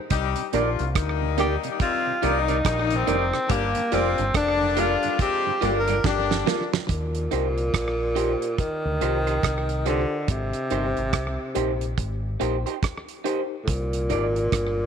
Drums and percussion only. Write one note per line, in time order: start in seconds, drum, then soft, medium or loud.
0.10 kick loud
0.10 closed hi-hat medium
0.36 closed hi-hat medium
0.53 closed hi-hat medium
0.79 closed hi-hat soft
0.95 kick loud
0.95 cross-stick loud
0.95 closed hi-hat medium
1.38 closed hi-hat medium
1.64 closed hi-hat medium
1.80 kick loud
1.80 closed hi-hat medium
2.23 closed hi-hat medium
2.48 closed hi-hat soft
2.65 kick loud
2.65 cross-stick loud
2.65 closed hi-hat medium
2.91 closed hi-hat medium
3.08 closed hi-hat medium
3.34 cross-stick medium
3.50 kick loud
3.50 closed hi-hat loud
3.75 closed hi-hat medium
3.92 closed hi-hat medium
4.18 closed hi-hat soft
4.34 kick loud
4.34 cross-stick loud
4.34 closed hi-hat medium
4.77 closed hi-hat medium
5.03 closed hi-hat medium
5.19 kick loud
5.19 closed hi-hat medium
5.62 closed hi-hat medium
5.88 closed hi-hat medium
6.04 kick loud
6.04 snare medium
6.31 snare medium
6.47 snare medium
6.74 snare medium
6.89 kick loud
6.89 closed hi-hat medium
7.15 closed hi-hat soft
7.31 closed hi-hat medium
7.58 closed hi-hat soft
7.74 kick loud
7.74 cross-stick loud
7.74 closed hi-hat medium
8.16 closed hi-hat medium
8.42 closed hi-hat soft
8.58 kick medium
8.58 closed hi-hat medium
9.01 closed hi-hat medium
9.27 closed hi-hat soft
9.43 kick loud
9.43 cross-stick loud
9.43 closed hi-hat medium
9.69 closed hi-hat soft
9.86 cross-stick soft
9.86 closed hi-hat medium
10.28 kick loud
10.28 closed hi-hat medium
10.53 closed hi-hat medium
10.70 closed hi-hat medium
10.97 closed hi-hat soft
11.13 kick loud
11.13 cross-stick loud
11.13 closed hi-hat medium
11.55 closed hi-hat medium
11.81 closed hi-hat medium
11.98 kick medium
11.98 closed hi-hat medium
12.41 closed hi-hat medium
12.67 closed hi-hat medium
12.83 kick loud
12.83 cross-stick loud
12.83 closed hi-hat medium
13.09 closed hi-hat soft
13.26 closed hi-hat medium
13.68 kick loud
13.68 closed hi-hat loud
13.93 closed hi-hat medium
14.10 closed hi-hat medium
14.36 closed hi-hat soft
14.52 kick loud
14.52 cross-stick loud
14.52 closed hi-hat medium